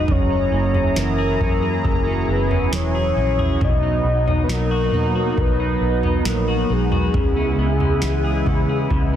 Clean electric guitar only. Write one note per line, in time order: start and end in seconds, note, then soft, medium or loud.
0.00 0.96 F#3 medium
0.00 0.17 B3 soft
0.00 0.17 D#4 medium
0.00 0.55 G#4 medium
0.08 1.83 F#2 medium
0.31 0.74 C#4 soft
0.52 2.76 A#3 soft
0.75 1.39 C#4 soft
0.96 2.72 E3 medium
1.18 1.62 G#4 medium
1.40 2.06 C#4 medium
1.63 2.94 G#4 medium
1.85 3.61 F#2 medium
2.07 2.50 C#4 medium
2.51 3.16 C#4 soft
2.73 3.70 E3 medium
2.95 3.38 G#4 medium
3.17 3.70 C#4 medium
3.39 3.70 G#4 medium
3.61 5.37 B2 medium
3.83 4.26 D#4 soft
4.27 4.92 D#4 medium
4.49 6.25 F#3 medium
4.71 5.14 F#4 medium
4.93 5.59 D#4 medium
5.15 6.47 F#4 medium
5.60 6.03 D#4 medium
6.04 6.69 D#4 medium
6.26 7.23 F#3 medium
6.48 6.91 F#4 medium
6.70 7.23 D#4 soft
6.92 7.23 F#4 medium
7.14 8.90 C#3 medium
7.37 7.80 C#4 soft
7.59 9.16 B3 medium
7.81 8.46 C#4 soft
8.03 9.16 E3 medium
8.24 8.69 G#4 medium
8.47 9.12 C#4 medium
8.69 9.16 G#4 soft
8.91 9.16 C#3 medium